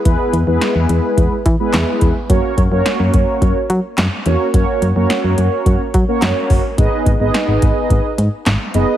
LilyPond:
<<
  \new Staff \with { instrumentName = "Analog polysynth" } { \time 4/4 \key fis \mixolydian \tempo 4 = 107 <gis b e' gis' b'>8 r16 <gis b e' gis' b'>4. r8 <gis b e' gis' b'>4 r16 | <ais cis' fis' ais' cis''>8 r16 <ais cis' fis' ais' cis''>4. r4 r16 <ais cis' fis' ais' cis''>8 | <ais cis' fis' ais' cis''>8 r16 <ais cis' fis' ais' cis''>4. r8 <ais cis' fis' ais' cis''>4 r16 | <b dis' gis' b' dis''>8 r16 <b dis' gis' b' dis''>4. r4 r16 <b dis' gis' b' dis''>8 | }
  \new Staff \with { instrumentName = "FM bass" } { \clef bass \time 4/4 \key fis \mixolydian e,16 r16 e,16 e,16 r16 e,16 e,16 r16 e,16 r16 e16 r16 e,16 r16 e,16 r16 | fis,16 r16 fis,16 fis,16 r16 fis,16 fis,16 r16 fis,16 r16 fis16 r16 fis,16 r16 e,16 r16 | fis,16 r16 fis,16 fis,16 r16 fis,16 fis,16 r16 fis,16 r16 fis16 r16 fis,16 r16 fis,,16 r16 | gis,,16 r16 gis,,16 gis,,16 r16 gis,,16 gis,,16 r16 gis,,16 r16 gis,16 r16 gis,,16 r16 fis,,16 r16 | }
  \new DrumStaff \with { instrumentName = "Drums" } \drummode { \time 4/4 <hh bd>8 hh8 <hh sn>8 hh8 <hh bd>8 <hh bd>8 <hc hh sn>8 <hh bd>8 | <hh bd>8 <hh bd>8 <hh sn>8 <hh bd>8 <hh bd>8 hh8 <hc hh sn>8 hh8 | <hh bd>8 hh8 <hh sn>8 hh8 <hh bd>8 <hh bd>8 <hc hh sn>8 <hho bd>8 | <hh bd>8 <hh bd>8 <hh sn>8 <hh bd>8 <hh bd>8 hh8 <hc hh sn>8 hh8 | }
>>